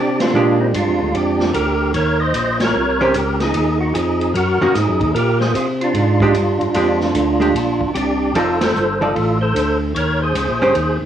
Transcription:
0.00 0.33 C3 medium
0.00 0.20 D4 medium
0.00 0.20 G4 loud
0.20 0.59 D4 medium
0.20 0.58 F4 medium
0.20 snare medium
0.20 ride medium
0.33 0.73 A#2 medium
0.33 1.46 G#3 medium
0.33 1.47 D4 medium
0.33 1.47 G4 medium
0.60 0.67 C4 medium
0.60 0.67 D#4 medium
0.74 0.87 G2 medium
0.74 1.12 D4 medium
0.74 1.16 F4 medium
0.74 kick soft
0.74 hi-hat pedal medium
0.74 ride medium
0.88 1.01 F2 medium
1.01 1.13 D2 medium
1.14 1.53 F2 medium
1.14 1.52 D4 medium
1.14 1.51 G4 loud
1.14 kick soft
1.14 ride medium
1.40 snare medium
1.54 1.93 D2 medium
1.54 1.92 G4 medium
1.54 1.91 A#4 loud
1.54 kick soft
1.54 hi-hat pedal medium
1.54 ride medium
1.94 2.33 D#2 medium
1.94 2.20 A#4 medium
1.94 2.18 C#5 loud
1.94 kick soft
1.94 ride medium
2.20 2.58 C5 medium
2.20 2.57 D#5 loud
2.34 2.73 A#1 medium
2.34 kick soft
2.34 hi-hat pedal medium
2.34 ride medium
2.60 3.12 A#4 medium
2.60 3.16 C#5 loud
2.60 snare medium
2.60 ride medium
2.74 3.13 C2 medium
3.01 3.13 D#3 medium
3.01 3.13 C#4 medium
3.01 3.13 G4 medium
3.01 3.13 C5 medium
3.14 3.53 C#2 medium
3.14 3.40 G4 medium
3.14 3.39 A#4 medium
3.14 kick soft
3.14 hi-hat pedal medium
3.14 ride medium
3.40 3.79 D#4 medium
3.40 3.78 G#4 loud
3.40 snare medium
3.40 ride soft
3.53 3.93 D#2 medium
3.53 kick soft
3.53 ride medium
3.80 3.94 D#4 medium
3.80 3.93 F#4 medium
3.94 4.33 F2 medium
3.94 4.32 D#4 medium
3.94 4.31 G#4 medium
3.94 kick soft
3.94 hi-hat pedal medium
3.94 ride medium
4.21 ride soft
4.34 4.58 F#2 medium
4.34 4.73 F#4 medium
4.34 4.75 A#4 loud
4.34 kick soft
4.34 ride medium
4.61 4.68 F#2 soft
4.61 4.73 D#3 medium
4.61 4.74 A#3 medium
4.61 4.74 C#4 medium
4.61 4.74 F#4 medium
4.74 4.87 G#2 medium
4.74 5.13 D#4 medium
4.74 5.11 G#4 loud
4.74 kick soft
4.74 snare soft
4.74 hi-hat pedal medium
4.74 ride medium
4.88 5.01 F#2 medium
5.01 5.14 D#2 medium
5.01 kick soft
5.01 ride soft
5.15 5.53 A#2 medium
5.15 5.40 G4 medium
5.15 5.39 A#4 loud
5.15 kick soft
5.15 ride medium
5.40 5.53 G#4 medium
5.40 5.53 C5 medium
5.40 snare medium
5.54 5.93 C3 medium
5.54 5.68 F4 medium
5.54 5.66 G#4 medium
5.54 kick soft
5.54 hi-hat pedal medium
5.54 ride medium
5.81 7.92 D4 medium
5.81 7.91 F4 medium
5.81 ride soft
5.94 6.33 G#2 loud
5.94 kick soft
5.94 ride medium
6.20 6.34 G#3 medium
6.20 6.34 D4 medium
6.20 6.34 G4 medium
6.20 kick medium
6.34 6.58 G2 medium
6.34 hi-hat pedal soft
6.34 ride medium
6.61 6.68 G2 soft
6.61 ride soft
6.74 7.13 F2 medium
6.74 6.98 G#3 medium
6.74 6.98 D4 medium
6.74 6.99 G4 medium
6.74 kick soft
6.74 ride medium
7.01 snare soft
7.14 7.53 D2 medium
7.14 kick soft
7.14 hi-hat pedal medium
7.14 ride medium
7.40 7.53 G#3 medium
7.40 7.53 D4 medium
7.40 7.53 G4 medium
7.40 ride soft
7.54 7.79 A#1 medium
7.54 kick soft
7.54 ride medium
7.80 7.87 A#1 soft
7.80 kick medium
7.94 8.33 C2 medium
7.94 8.33 D4 medium
7.94 8.35 G4 medium
7.94 kick soft
7.94 hi-hat pedal medium
7.94 ride medium
8.35 8.73 F1 medium
8.35 8.58 F3 medium
8.35 8.59 D#4 medium
8.35 8.60 F4 medium
8.35 8.61 A4 loud
8.35 8.59 A4 medium
8.35 8.59 D5 medium
8.35 kick soft
8.35 ride medium
8.61 8.99 A4 medium
8.61 9.02 C5 loud
8.61 snare medium
8.61 ride medium
8.75 9.13 G1 medium
8.75 hi-hat pedal medium
9.01 9.13 F3 medium
9.01 9.14 D#4 medium
9.01 9.39 F4 medium
9.01 9.38 A4 loud
9.01 9.14 A4 medium
9.01 9.14 D5 medium
9.01 ride soft
9.15 9.54 A1 medium
9.15 kick soft
9.15 ride medium
9.41 9.79 A4 medium
9.41 9.78 C5 medium
9.55 9.93 D2 medium
9.55 kick soft
9.55 hi-hat pedal medium
9.55 ride medium
9.95 10.33 D#2 medium
9.95 10.20 A#4 medium
9.95 10.21 C#5 medium
9.95 kick soft
9.95 ride medium
10.22 10.98 G#4 medium
10.22 10.97 C5 medium
10.35 10.47 C#2 medium
10.35 kick soft
10.35 hi-hat pedal medium
10.35 ride medium
10.49 10.61 A#1 medium
10.61 10.73 G1 medium
10.61 10.74 D#3 medium
10.61 10.74 C#4 medium
10.61 10.74 G4 medium
10.61 10.74 C5 medium
10.75 10.99 D#2 medium
10.75 kick soft
10.75 ride medium
11.01 11.06 D#2 soft

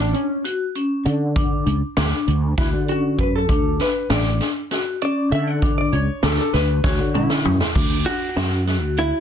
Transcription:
0.00 0.12 A1 medium
0.00 0.14 D4 medium
0.00 0.23 D4 medium
0.13 0.42 C#4 medium
0.13 closed hi-hat medium
0.44 0.64 F#4 medium
0.44 closed hi-hat medium
0.75 1.15 C#4 medium
0.75 closed hi-hat medium
1.05 1.63 D3 medium
1.05 closed hi-hat medium
1.36 1.76 D4 medium
1.36 kick loud
1.36 closed hi-hat medium
1.66 1.81 C#2 medium
1.66 closed hi-hat medium
1.97 2.11 D2 medium
1.97 2.37 D4 medium
1.97 snare loud
1.97 closed hi-hat medium
2.27 2.56 D2 medium
2.27 closed hi-hat medium
2.58 2.66 E4 medium
2.58 2.78 F#4 medium
2.58 kick loud
2.58 snare soft
2.58 closed hi-hat medium
2.73 3.16 D3 medium
2.88 3.29 C#4 medium
2.88 3.17 F#4 medium
2.88 closed hi-hat medium
3.18 3.49 F#2 medium
3.18 3.34 B4 medium
3.18 kick medium
3.18 closed hi-hat medium
3.35 3.77 A4 medium
3.49 3.78 D2 loud
3.49 3.90 D4 medium
3.49 kick medium
3.49 closed hi-hat medium
3.79 4.09 B4 medium
3.79 snare soft
3.79 closed hi-hat medium
4.10 4.39 A1 medium
4.10 4.50 D4 medium
4.10 4.39 D5 medium
4.10 snare medium
4.10 closed hi-hat medium
4.40 snare soft
4.40 closed hi-hat medium
4.71 4.91 F#4 medium
4.71 snare soft
4.71 closed hi-hat medium
5.01 5.42 C#4 medium
5.01 5.30 D5 medium
5.01 closed hi-hat medium
5.32 5.89 D3 medium
5.32 5.47 E5 loud
5.32 closed hi-hat medium
5.47 5.78 F#5 loud
5.62 6.02 D4 medium
5.62 kick loud
5.62 closed hi-hat medium
5.78 5.93 D5 medium
5.92 6.07 C#2 medium
5.92 6.24 C#5 medium
5.92 closed hi-hat medium
6.23 6.37 D2 medium
6.23 6.63 D4 medium
6.23 6.37 A4 medium
6.23 snare loud
6.23 closed hi-hat medium
6.38 6.52 A4 medium
6.53 6.82 D2 medium
6.53 6.85 B4 medium
6.53 snare soft
6.53 closed hi-hat medium
6.84 6.98 D2 medium
6.84 7.04 F#4 medium
6.84 7.12 C#5 medium
6.84 kick loud
6.84 snare medium
6.99 7.42 D3 medium
7.14 7.54 C#4 medium
7.14 7.71 E4 medium
7.14 mid tom medium
7.30 snare medium
7.45 7.60 F#2 medium
7.45 floor tom medium
7.60 snare medium
7.75 8.04 D2 medium
7.75 8.15 D4 medium
7.75 kick loud
7.75 crash medium
8.06 8.63 F#4 loud
8.06 snare soft
8.06 closed hi-hat medium
8.36 8.82 F#2 medium
8.36 8.56 C#4 medium
8.36 snare medium
8.36 closed hi-hat medium
8.67 9.07 F#4 medium
8.67 snare soft
8.67 closed hi-hat medium
8.82 9.11 D2 medium
8.97 9.20 E4 medium
8.97 closed hi-hat medium

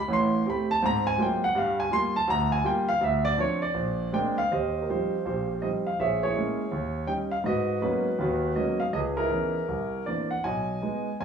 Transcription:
0.00 0.10 B5 loud
0.08 0.41 A1 medium
0.08 0.41 A2 medium
0.13 0.46 C6 medium
0.46 0.71 A3 medium
0.46 0.71 C4 medium
0.46 0.71 G4 medium
0.46 0.71 B5 medium
0.71 0.83 A5 loud
0.83 1.14 G#2 medium
0.83 1.14 C4 medium
0.83 1.07 A#5 loud
1.07 1.19 G#5 loud
1.18 1.42 F#3 medium
1.18 1.43 G#3 medium
1.18 1.43 A#3 soft
1.18 1.43 C4 medium
1.18 1.43 F4 medium
1.22 1.43 G5 medium
1.44 1.56 F#5 loud
1.55 1.86 G2 medium
1.55 1.86 G3 medium
1.55 1.79 F5 medium
1.80 1.92 G#5 loud
1.91 2.15 G3 medium
1.91 2.16 A#3 medium
1.91 2.16 F4 medium
1.91 2.14 C6 loud
2.16 2.28 A5 loud
2.28 2.59 D2 medium
2.28 2.51 A#5 loud
2.52 2.64 G#5 loud
2.64 2.89 G3 medium
2.64 2.89 A#3 medium
2.64 2.89 F4 medium
2.64 2.88 G5 medium
2.89 3.01 F5 loud
3.01 3.33 D2 medium
3.01 3.25 E5 medium
3.25 3.38 D5 loud
3.37 3.63 F3 medium
3.37 3.63 C4 medium
3.37 3.63 D4 medium
3.37 3.62 C#5 medium
3.62 4.10 D5 medium
3.74 4.08 A#1 medium
4.12 4.39 G#3 medium
4.12 4.39 A#3 medium
4.12 4.39 C4 medium
4.12 4.39 D4 medium
4.12 4.39 G5 medium
4.38 4.52 F5 loud
4.51 4.84 D#2 medium
4.51 4.89 G4 medium
4.51 4.89 C5 medium
4.51 4.82 D#5 medium
4.82 4.88 A#4 medium
4.89 5.14 F3 soft
4.89 5.14 G3 soft
4.89 5.15 C4 soft
4.89 5.15 D#4 medium
4.89 5.25 F4 medium
4.89 5.25 G4 soft
4.89 5.25 C5 medium
5.25 5.58 A#1 medium
5.25 5.96 F4 medium
5.25 5.96 G4 soft
5.25 5.65 C5 medium
5.62 5.88 F3 soft
5.62 5.88 G3 soft
5.62 5.88 C4 soft
5.62 5.88 D#4 medium
5.62 5.67 D#5 medium
5.87 6.01 F5 medium
5.99 6.31 A#1 medium
5.99 6.22 G#4 medium
5.99 6.22 C#5 medium
5.99 6.24 E5 medium
6.23 6.70 E4 medium
6.23 6.70 G#4 medium
6.23 7.05 C#5 medium
6.36 6.61 G#3 soft
6.36 6.61 A#3 soft
6.36 6.61 C#4 medium
6.72 7.03 D#2 medium
7.07 7.33 G3 soft
7.07 7.32 C#4 soft
7.07 7.33 D#4 medium
7.07 7.13 G5 medium
7.31 7.36 F5 medium
7.44 7.76 G#2 medium
7.44 7.82 F#4 medium
7.44 7.81 B4 medium
7.44 7.80 D#5 medium
7.81 8.07 F#3 medium
7.81 8.07 G#3 soft
7.81 8.07 A#3 soft
7.81 8.07 B3 medium
7.81 8.07 C#4 medium
7.81 8.20 D#4 medium
7.81 8.20 F#4 medium
7.81 8.19 B4 medium
8.19 8.51 D#2 medium
8.19 8.51 D#3 medium
8.19 8.90 D#4 medium
8.19 8.90 F#4 medium
8.19 8.58 B4 medium
8.56 8.81 F#3 soft
8.56 8.81 G#3 soft
8.56 8.81 A#3 soft
8.56 8.81 B3 soft
8.56 8.81 C#4 medium
8.56 8.80 D#5 medium
8.80 8.85 F5 medium
8.93 9.25 C#2 medium
8.93 9.65 G#4 medium
8.93 9.65 B4 medium
8.93 8.98 D#5 medium
9.17 9.30 D#4 medium
9.17 10.03 E4 medium
9.17 10.09 A#4 medium
9.30 9.56 E3 soft
9.30 9.55 B3 soft
9.30 9.56 C#4 soft
9.30 9.56 D#4 medium
9.68 10.01 C2 medium
10.06 10.32 E3 soft
10.06 10.32 A#3 soft
10.06 10.32 C4 soft
10.06 10.32 D4 soft
10.06 10.29 D5 medium
10.31 10.45 F#5 medium
10.44 10.77 B1 medium
10.44 11.17 D#5 medium
10.44 11.16 G#5 medium
10.82 11.08 G#3 soft
10.82 11.08 B3 soft
10.82 11.08 D#4 medium
11.20 11.25 F#1 medium
11.20 11.25 F#2 medium
11.20 11.25 G#5 medium

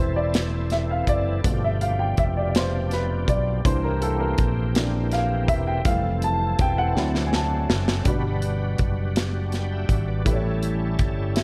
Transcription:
0.00 1.04 E1 medium
0.00 0.30 E3 soft
0.00 1.41 E3 medium
0.00 0.30 G3 soft
0.00 0.30 A3 soft
0.00 1.41 C4 medium
0.00 1.41 E4 medium
0.00 1.44 A4 medium
0.00 0.16 C5 medium
0.16 0.73 D5 medium
0.34 snare medium
0.34 closed hi-hat medium
0.70 0.89 E5 medium
0.70 snare soft
0.70 closed hi-hat soft
0.91 1.09 F5 medium
1.07 1.41 F#1 medium
1.07 1.65 D5 medium
1.07 kick medium
1.07 closed hi-hat medium
1.44 2.14 G1 medium
1.44 3.61 B2 medium
1.44 3.62 B2 medium
1.44 3.61 F3 medium
1.44 3.62 F3 soft
1.44 3.62 A3 soft
1.44 3.61 D4 medium
1.44 1.51 F#4 medium
1.44 kick medium
1.44 closed hi-hat medium
1.51 3.64 G4 medium
1.64 1.83 E5 medium
1.81 2.00 F5 medium
1.81 closed hi-hat soft
1.99 2.17 G5 medium
2.17 3.24 F1 medium
2.17 2.37 E5 medium
2.17 kick medium
2.17 closed hi-hat soft
2.37 2.48 D5 medium
2.49 2.56 D5 medium
2.55 2.93 C5 medium
2.55 snare loud
2.55 closed hi-hat medium
2.91 3.30 B4 medium
2.91 snare soft
2.91 closed hi-hat soft
3.28 3.62 B1 medium
3.28 3.67 D5 medium
3.28 kick medium
3.28 closed hi-hat soft
3.65 4.35 C2 medium
3.65 4.74 E3 soft
3.65 5.82 E3 medium
3.65 4.74 A#3 soft
3.65 5.82 A#3 medium
3.65 5.82 C4 medium
3.65 4.75 D4 medium
3.65 5.82 G4 medium
3.65 3.84 C5 medium
3.65 kick medium
3.65 closed hi-hat medium
3.84 4.03 A#4 medium
4.02 4.19 A4 medium
4.02 closed hi-hat soft
4.20 4.90 A#4 medium
4.38 5.45 A#1 medium
4.38 kick medium
4.38 closed hi-hat soft
4.75 5.09 E3 soft
4.75 5.09 A#3 soft
4.75 5.09 D4 medium
4.75 snare loud
4.75 closed hi-hat medium
5.12 5.50 F5 medium
5.12 snare soft
5.12 closed hi-hat soft
5.48 5.82 E1 medium
5.48 5.68 E5 medium
5.48 kick medium
5.48 closed hi-hat medium
5.67 5.86 G5 medium
5.85 6.55 F1 loud
5.85 6.95 E3 medium
5.85 6.92 E3 medium
5.85 6.91 G3 soft
5.85 6.92 A3 soft
5.85 6.94 C4 medium
5.85 6.94 A4 medium
5.85 6.24 F5 medium
5.85 kick loud
5.85 closed hi-hat medium
6.22 6.57 A5 medium
6.22 closed hi-hat soft
6.59 6.93 E1 medium
6.59 6.79 G5 loud
6.59 kick medium
6.59 closed hi-hat soft
6.78 7.27 F#5 medium
6.95 7.65 D2 medium
6.95 8.06 F#3 medium
6.95 7.45 F#3 medium
6.95 8.05 C4 medium
6.95 7.45 C4 soft
6.95 8.05 D4 medium
6.95 7.45 E4 medium
6.95 8.05 A4 medium
6.95 snare medium
7.15 snare medium
7.27 7.33 G#5 medium
7.33 7.68 A5 medium
7.33 snare medium
7.70 8.03 F#1 medium
7.70 snare medium
7.88 snare medium
8.05 8.75 G1 medium
8.05 9.12 B2 medium
8.05 10.22 G3 medium
8.05 10.22 D4 medium
8.05 10.22 F#4 medium
8.05 9.14 B4 medium
8.05 10.23 B4 medium
8.05 kick medium
8.05 closed hi-hat medium
8.42 closed hi-hat soft
8.78 9.85 F#1 medium
8.78 kick medium
8.78 closed hi-hat soft
9.16 snare medium
9.16 closed hi-hat medium
9.52 9.70 G5 soft
9.52 9.70 B5 medium
9.52 snare soft
9.52 closed hi-hat soft
9.71 9.88 E5 medium
9.71 9.88 G5 medium
9.89 10.23 G#1 medium
9.89 10.07 E5 medium
9.89 kick medium
9.89 closed hi-hat soft
10.07 10.43 B4 soft
10.07 10.42 D5 medium
10.25 10.95 A1 medium
10.25 11.32 A2 medium
10.25 11.43 G3 medium
10.25 11.43 A3 medium
10.25 11.43 C#4 medium
10.25 11.43 E4 medium
10.25 11.43 G4 medium
10.25 11.43 A4 medium
10.25 10.33 B4 medium
10.25 kick medium
10.25 closed hi-hat medium
10.34 11.38 C#5 medium
10.63 closed hi-hat soft
10.99 11.43 G1 medium
10.99 kick medium
10.99 closed hi-hat soft
11.36 11.43 B4 soft
11.36 11.43 E5 medium
11.36 snare medium
11.36 closed hi-hat medium

